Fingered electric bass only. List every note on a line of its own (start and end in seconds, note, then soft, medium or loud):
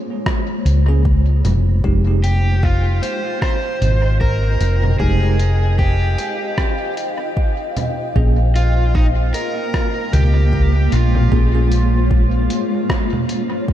0.65 1.42 C#2 medium
1.44 1.80 F1 medium
1.84 3.00 F1 medium
3.82 4.57 G#1 medium
4.60 4.96 F1 medium
5.00 6.15 F1 medium
8.16 9.31 A#1 medium
10.13 10.89 C#2 medium
10.92 11.28 A#1 medium
11.32 12.47 A#1 medium